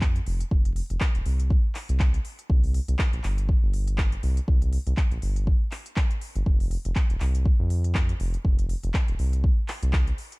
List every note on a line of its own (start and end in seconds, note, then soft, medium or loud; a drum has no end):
0.00 0.20 F2 medium
0.00 kick loud
0.00 clap loud
0.16 closed hi-hat medium
0.26 0.43 F1 loud
0.26 open hi-hat loud
0.40 closed hi-hat medium
0.51 0.81 F1 loud
0.51 kick loud
0.65 closed hi-hat medium
0.76 open hi-hat loud
0.90 0.97 F1 loud
0.90 closed hi-hat medium
1.00 kick loud
1.00 clap loud
1.15 1.21 D#1 medium
1.15 closed hi-hat soft
1.26 1.56 C2 medium
1.26 open hi-hat loud
1.40 closed hi-hat medium
1.50 kick loud
1.75 clap medium
1.75 open hi-hat loud
1.89 2.18 C2 medium
1.89 closed hi-hat medium
2.00 kick loud
2.00 clap loud
2.14 closed hi-hat medium
2.25 open hi-hat loud
2.39 closed hi-hat medium
2.50 2.80 C2 loud
2.50 kick loud
2.64 open hi-hat medium
2.74 open hi-hat loud
2.88 2.95 C2 medium
2.88 closed hi-hat medium
2.99 kick loud
2.99 clap loud
3.13 3.20 A#1 medium
3.13 closed hi-hat soft
3.24 3.54 G1 medium
3.24 clap medium
3.24 open hi-hat loud
3.38 closed hi-hat medium
3.49 kick loud
3.63 4.16 G1 medium
3.74 open hi-hat loud
3.88 closed hi-hat medium
3.98 kick loud
3.98 clap loud
4.12 closed hi-hat soft
4.23 4.40 C2 loud
4.23 open hi-hat loud
4.37 closed hi-hat medium
4.48 4.78 C2 loud
4.48 kick loud
4.62 closed hi-hat medium
4.73 open hi-hat loud
4.87 4.93 C2 medium
4.87 closed hi-hat medium
4.97 kick loud
4.97 clap loud
5.11 5.18 A#1 medium
5.11 closed hi-hat soft
5.22 5.52 G1 medium
5.22 open hi-hat loud
5.36 closed hi-hat medium
5.47 kick loud
5.71 clap medium
5.71 open hi-hat loud
5.86 closed hi-hat medium
5.96 kick loud
5.96 clap loud
6.11 closed hi-hat soft
6.21 open hi-hat loud
6.35 6.42 G1 medium
6.35 closed hi-hat medium
6.46 6.76 F1 loud
6.46 kick loud
6.60 open hi-hat medium
6.71 open hi-hat loud
6.85 6.92 F1 loud
6.85 closed hi-hat medium
6.95 kick loud
6.95 clap loud
7.10 7.17 D#1 medium
7.10 closed hi-hat soft
7.20 7.51 C2 medium
7.20 clap medium
7.20 open hi-hat loud
7.35 closed hi-hat medium
7.45 kick loud
7.60 8.13 F2 medium
7.70 open hi-hat loud
7.84 closed hi-hat medium
7.95 kick loud
7.95 clap loud
8.09 closed hi-hat soft
8.20 8.36 F1 medium
8.20 open hi-hat loud
8.34 closed hi-hat medium
8.45 8.75 F1 loud
8.45 kick loud
8.59 closed hi-hat medium
8.69 open hi-hat loud
8.83 8.90 F1 loud
8.83 closed hi-hat medium
8.94 kick loud
8.94 clap loud
9.08 9.15 D#1 medium
9.08 closed hi-hat soft
9.19 9.49 C2 medium
9.19 open hi-hat loud
9.33 closed hi-hat medium
9.44 kick loud
9.68 clap medium
9.68 open hi-hat loud
9.83 10.11 C2 medium
9.83 closed hi-hat medium
9.93 kick loud
9.93 clap loud
10.07 closed hi-hat soft
10.18 open hi-hat loud
10.32 closed hi-hat medium